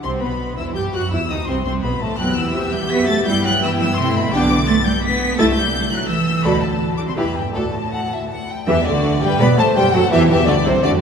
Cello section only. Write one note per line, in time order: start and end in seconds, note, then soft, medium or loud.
0.04 0.21 C3 medium
0.22 0.58 B2 medium
0.58 0.76 E3 medium
0.76 0.94 G3 medium
0.94 1.02 F#3 medium
1.12 1.20 E3 medium
1.30 1.37 D#3 medium
1.48 1.64 C3 medium
1.65 1.83 C3 medium
1.84 2.02 B2 medium
2.01 2.19 A2 medium
2.19 2.37 F#3 medium
2.37 2.73 E3 medium
2.73 2.91 G3 medium
2.91 3.09 B3 loud
3.09 3.16 A3 medium
3.27 3.44 G3 loud
3.44 3.62 F#3 medium
3.62 3.70 E3 loud
3.80 3.87 E3 medium
3.98 4.16 C3 loud
4.16 4.33 B2 medium
4.33 4.69 D3 loud
4.69 4.76 A3 loud
4.86 5.03 G3 medium
5.04 5.39 B3 loud
5.38 5.56 A3 loud
5.56 5.92 G3 medium
5.92 6.09 F#3 medium
6.09 6.44 E3 medium
6.44 6.62 B2 loud
6.62 6.98 A2 medium
6.98 7.02 D3 medium
7.07 7.11 C3 medium
7.17 7.24 B2 medium
7.36 7.54 G2 medium
7.54 8.30 A2 medium
8.68 8.75 E3 loud
8.86 9.21 D3 medium
9.22 9.29 G3 medium
9.40 9.47 B3 loud
9.58 9.65 A3 medium
9.75 9.83 G3 loud
9.94 10.01 F#3 loud
10.11 10.28 E3 loud
10.29 10.36 E3 loud
10.47 10.54 D3 loud
10.65 10.82 C3 loud
10.83 10.90 D3 loud